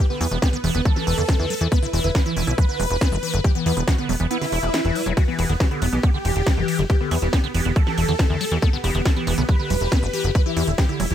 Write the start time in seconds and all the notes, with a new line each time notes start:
Already playing: B4
0.10 D3 B3
0.21 E2 F#3 B3, open hi-hat
0.31 E1 E3 B3, closed hi-hat
0.42 B3 G4, kick, snare, closed hi-hat
0.53 D3 B3, closed hi-hat
0.64 E1 E3 B3, open hi-hat
0.75 E1 D3 B3
0.85 E3 A4, kick, closed hi-hat
0.96 E3, snare
1.07 E1 E3, open hi-hat
1.18 E2 D3, closed hi-hat
1.29 E3, kick, snare, closed hi-hat
1.39 E2 D3
1.50 F#3, open hi-hat
1.61 E2 E3, closed hi-hat
1.72 B3 B4, kick, closed hi-hat
1.82 D3 E4
1.93 E1 E3 E4, open hi-hat
2.04 E1 D3 E4, closed hi-hat
2.15 E3 B4, kick, snare, closed hi-hat
2.26 E3 E4, closed hi-hat
2.36 E1 E3 E4, open hi-hat
2.47 B1 D3 E4, closed hi-hat
2.58 E3 B4, kick, closed hi-hat
2.69 D3
2.80 E1 F#3, open hi-hat
2.90 E1 E3, closed hi-hat
3.01 B3, kick, snare, closed hi-hat
3.12 F#1 D3
3.23 E3, open hi-hat
3.34 F#1 D3, closed hi-hat
3.44 E3 G4, kick, closed hi-hat
3.55 E3 B3, closed hi-hat
3.66 E2 E3 B3, open hi-hat
3.77 E1 D3 B3, closed hi-hat
3.87 E3 F#4, kick, snare, closed hi-hat
3.98 D3 B3, closed hi-hat
4.09 E1 F#3 B3, open hi-hat
4.20 E1 E3 B3, closed hi-hat
4.31 B3 E4, closed hi-hat, swell
4.41 D3, snare, open hi-hat
4.52 E1 E4, open hi-hat
4.63 E1 E3, closed hi-hat
4.74 E3, snare, closed hi-hat
4.85 E1 E3, closed hi-hat
4.95 G3, open hi-hat
5.06 E1 F#3, closed hi-hat
5.17 E3 F#4 G4, kick, closed hi-hat, ride
5.28 E3 B3
5.39 E1 E3 B3, open hi-hat, ride
5.49 E1 D3 B3, closed hi-hat
5.60 E3 F#4, kick, snare, closed hi-hat, ride
5.71 D3 B3, closed hi-hat
5.82 E1 F#3 B3, open hi-hat, ride
5.93 B1 E3 B3
6.03 B3 G4, kick, closed hi-hat, ride
6.14 D3
6.25 E1 E3, open hi-hat, ride
6.36 E1 D3, closed hi-hat
6.47 E3, kick, snare, closed hi-hat, ride
6.57 F#1 E3
6.68 E3, open hi-hat, ride
6.79 F#1 D3, closed hi-hat
6.90 E3 G4, kick, closed hi-hat, ride
7.00 D3 B3
7.11 E2 F#3 B3, open hi-hat, ride
7.22 E1 E3 B3, closed hi-hat
7.33 B3 G4, kick, snare, closed hi-hat, ride
7.44 D3 B3, closed hi-hat
7.54 E1 E3 B3, open hi-hat, ride
7.65 E1 D3 B3, closed hi-hat
7.76 E3 A4, kick, closed hi-hat, ride
7.87 E3, snare
7.98 E1 E3, open hi-hat, ride
8.08 E2 D3
8.19 E3, kick, snare, closed hi-hat, ride
8.30 E2 D3
8.41 F#3, open hi-hat, ride
8.52 E2 E3, closed hi-hat
8.62 B3 A4, kick, closed hi-hat, ride
8.73 D3 B3
8.84 E1 E3 B3, open hi-hat, ride
8.95 E1 D3 B3, closed hi-hat
9.05 E3 A4, kick, snare, closed hi-hat, ride
9.16 E3 B3, closed hi-hat
9.27 E1 E3 B3, open hi-hat, ride
9.38 B1 D3 B3, closed hi-hat
9.49 E3 B4, kick, closed hi-hat, ride
9.59 D3
9.70 E1 F#3, open hi-hat, ride
9.81 E1 E3, closed hi-hat
9.92 B3, kick, snare, closed hi-hat, ride
10.03 F#1 D3
10.13 E3, open hi-hat, ride
10.24 F#1 D3, closed hi-hat
10.35 E3 B4, kick, closed hi-hat, ride
10.46 E3 E4
10.57 E2 E3 E4, open hi-hat, ride
10.67 E1 D3 E4, closed hi-hat
10.78 E3 G4, kick, snare, closed hi-hat, ride
10.89 D3 E4, closed hi-hat
11.00 E1 F#3 E4, open hi-hat, ride
11.11 E1 E3 E4